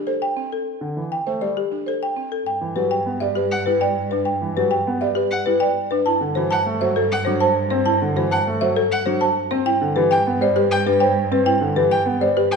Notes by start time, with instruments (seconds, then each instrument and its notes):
Already playing: marimba D4
0.07 marimba A4 C5
0.22 marimba G5
0.37 marimba C4
0.53 marimba A4
0.81 grand piano D3
0.97 grand piano E3
1.12 marimba G5
1.27 grand piano A3, marimba C5
1.41 grand piano G3, marimba A4 D5
1.57 marimba G4
1.72 marimba D4
1.86 marimba A4 C5
2.03 marimba G5
2.17 marimba C4
2.32 marimba A4
2.46 cello G2, marimba G5
2.61 grand piano E3
2.76 grand piano F#3, marimba G4 B4
2.91 marimba G5
3.06 grand piano B3
3.20 grand piano G3, marimba D5 E5
3.35 marimba G4 B4
3.51 violin F#5
3.66 grand piano G3, marimba E4 B4
3.81 marimba D5 G5
4.11 marimba D4 B4
4.25 marimba G5
4.42 grand piano E3
4.57 grand piano F#3, marimba G4 B4
4.71 marimba G5
4.87 grand piano B3
5.01 grand piano G3, marimba D5 E5
5.15 marimba G4 B4
5.31 violin F#5
5.46 grand piano G3, marimba E4 B4
5.60 marimba D5 G5
5.91 marimba D4 B4
6.06 cello G2, marimba E4 A5
6.21 grand piano D3
6.35 grand piano E3, marimba F#4 C5
6.51 violin F#5, marimba A5
6.66 grand piano A3
6.81 grand piano F#3, marimba C5 E5
6.96 marimba A4
7.12 violin F#5
7.25 grand piano F#3, marimba D4 C5
7.41 marimba C5 A5
7.70 marimba C4 C5, grand piano C4
7.86 marimba E4 A5
8.02 grand piano D3
8.16 grand piano E3, marimba F#4 C5
8.31 violin F#5, marimba A5
8.47 grand piano A3
8.61 grand piano F#3, marimba C5 E5
8.76 marimba A4
8.92 violin F#5
9.06 grand piano F#3, marimba D4 C5
9.21 marimba C5 A5
9.51 marimba C4 C5, grand piano C4
9.66 cello G2, marimba E4 G5
9.82 grand piano D3
9.96 grand piano E3, marimba G4 B4
10.11 marimba G5, violin G5
10.27 grand piano B3
10.41 grand piano G3, marimba C5 D5
10.56 marimba G4 B4
10.71 violin G5
10.86 grand piano G3, marimba D4 B4
11.00 marimba C5 G5
11.31 grand piano C4, marimba C4 B4
11.46 marimba E4 G5
11.61 grand piano D3
11.76 grand piano E3, marimba G4 B4
11.91 marimba G5, violin G5
12.06 grand piano B3
12.21 grand piano G3, marimba C5 D5
12.37 marimba G4 B4
12.51 violin G5